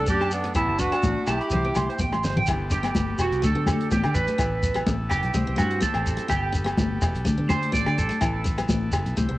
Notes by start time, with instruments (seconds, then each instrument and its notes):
0.06 fingered electric bass F#2, steel-string acoustic guitar B3, horn section D4 G4, clean electric guitar D5, kick, closed hi-hat, high conga, shekere
0.21 clean electric guitar A5, cross-stick, low agogo
0.31 horn section B3 D4, closed hi-hat, muted conga, shekere
0.44 steel-string acoustic guitar A3, muted clean electric guitar stroke, closed hi-hat
0.54 fingered electric bass A1, horn section B3 E4, steel-string acoustic guitar E4, clean electric guitar A5, kick, cross-stick, closed hi-hat, muted conga, low agogo, shekere
0.68 fingered electric bass F#1, clean electric guitar A5
0.78 horn section D4 F#4, steel-string acoustic guitar D4, clean electric guitar B4, kick, closed hi-hat, muted conga, shekere
0.92 steel-string acoustic guitar B3, clean electric guitar A5, cross-stick, closed hi-hat, low agogo
1.03 fingered electric bass A1, kick, closed hi-hat, high conga, shekere
1.27 fingered electric bass B1, horn section E4 G4, clean electric guitar A5, cross-stick, closed hi-hat, high conga, low agogo, shekere
1.41 clean electric guitar B5, closed hi-hat
1.50 fingered electric bass C2, steel-string acoustic guitar A3, clean electric guitar C5, kick, closed hi-hat, muted conga, low conga, shekere
1.64 steel-string acoustic guitar B3, clean electric guitar G5
1.75 fingered electric bass C2, steel-string acoustic guitar A3, clean electric guitar C6, cross-stick, closed hi-hat, high conga, low conga, low agogo, shekere
1.89 clean electric guitar C5, closed hi-hat
1.99 fingered electric bass A1, steel-string acoustic guitar B3, clean electric guitar G5, kick, closed hi-hat, high conga, shekere
2.12 clean electric guitar C6, cross-stick, high conga, low agogo
2.24 fingered electric bass G1, clean electric guitar C5, snare, low conga, shekere
2.37 clean electric guitar G5, muted steel-string acoustic guitar stroke, floor tom, low conga
2.46 fingered electric bass G1, transistor combo organ B3 A4, steel-string acoustic guitar E4, kick, cross-stick, closed hi-hat, muted conga, low agogo, shekere
2.51 transistor combo organ G4
2.70 steel-string acoustic guitar D4, clean electric guitar G4, closed hi-hat, shekere
2.83 steel-string acoustic guitar B3, cross-stick, closed hi-hat, low agogo, shekere
2.95 fingered electric bass G1, kick, closed hi-hat, muted conga, high conga, shekere
3.18 fingered electric bass E1, clean electric guitar F#4, cross-stick, closed hi-hat, low agogo, shekere
3.31 fingered electric bass C2, closed hi-hat, shekere
3.42 fingered electric bass D2, steel-string acoustic guitar A3, transistor combo organ D4, clean electric guitar A4, kick, closed hi-hat, muted conga, shekere
3.55 fingered electric bass D3, steel-string acoustic guitar B3
3.66 steel-string acoustic guitar A3, cross-stick, closed hi-hat, muted conga, high conga, low agogo, shekere
3.80 closed hi-hat
3.91 fingered electric bass A1, steel-string acoustic guitar B3, clean electric guitar G4, kick, closed hi-hat, high conga, shekere
4.04 fingered electric bass D3, cross-stick, low agogo
4.14 fingered electric bass A1, clean electric guitar B4, closed hi-hat, shekere
4.27 steel-string acoustic guitar A3, closed hi-hat, shekere
4.38 fingered electric bass A1, transistor combo organ B3 E4, steel-string acoustic guitar E4, kick, cross-stick, closed hi-hat, muted conga, low agogo, shekere
4.63 kick, closed hi-hat, shekere
4.74 steel-string acoustic guitar B3, cross-stick, closed hi-hat, low agogo, shekere
4.87 fingered electric bass A1, kick, closed hi-hat, muted conga, high conga, shekere
5.10 fingered electric bass F#1, clean electric guitar G4, cross-stick, closed hi-hat, low agogo, shekere
5.23 fingered electric bass B1, closed hi-hat, shekere
5.34 fingered electric bass C2, steel-string acoustic guitar A3, transistor combo organ C4 G4, kick, closed hi-hat, muted conga, shekere
5.47 fingered electric bass C2, steel-string acoustic guitar B3
5.56 fingered electric bass G2, steel-string acoustic guitar A3, clean electric guitar F#4, cross-stick, closed hi-hat, muted conga, low agogo, shekere
5.71 closed hi-hat
5.81 steel-string acoustic guitar B3, clean electric guitar A4, kick, closed hi-hat, high conga, shekere
5.94 fingered electric bass A1, cross-stick, low agogo
6.06 closed hi-hat, shekere
6.17 muted steel-string acoustic guitar stroke, closed hi-hat, shekere
6.28 fingered electric bass G1, transistor combo organ B3 A4, clean electric guitar G4, muted steel-string acoustic guitar stroke, kick, cross-stick, closed hi-hat, muted conga, low agogo, shekere
6.52 steel-string acoustic guitar D4, closed hi-hat, shekere
6.64 steel-string acoustic guitar B3, cross-stick, closed hi-hat, low agogo, shekere
6.77 fingered electric bass G1, kick, closed hi-hat, muted conga, high conga, shekere
7.02 fingered electric bass E1, cross-stick, closed hi-hat, low agogo, shekere
7.15 fingered electric bass B1, closed hi-hat, shekere
7.25 fingered electric bass D2, steel-string acoustic guitar A3, transistor combo organ D4, kick, closed hi-hat, muted conga, shekere
7.38 fingered electric bass D3, steel-string acoustic guitar B3
7.49 steel-string acoustic guitar A3, clean electric guitar C5, cross-stick, closed hi-hat, muted conga, high conga, low agogo, shekere
7.62 closed hi-hat
7.72 fingered electric bass A1, steel-string acoustic guitar B3, clean electric guitar D5, kick, closed hi-hat, high conga, shekere
7.86 fingered electric bass D3, cross-stick, low agogo
7.98 fingered electric bass A1, clean electric guitar A4, closed hi-hat, shekere
8.09 steel-string acoustic guitar A3, closed hi-hat, shekere
8.21 fingered electric bass A1, transistor combo organ B3 E4 A4, steel-string acoustic guitar E4, kick, cross-stick, closed hi-hat, muted conga, low agogo, shekere
8.44 muted steel-string acoustic guitar stroke, kick, closed hi-hat, shekere
8.58 steel-string acoustic guitar B3, cross-stick, closed hi-hat, low agogo, shekere
8.69 fingered electric bass A1, kick, closed hi-hat, muted conga, high conga, shekere
8.92 fingered electric bass F#1, cross-stick, closed hi-hat, low agogo, shekere
9.06 fingered electric bass B1, closed hi-hat, shekere
9.17 fingered electric bass C2, steel-string acoustic guitar A3, transistor combo organ C4 G4, kick, closed hi-hat, muted conga, shekere
9.29 fingered electric bass C2, steel-string acoustic guitar B3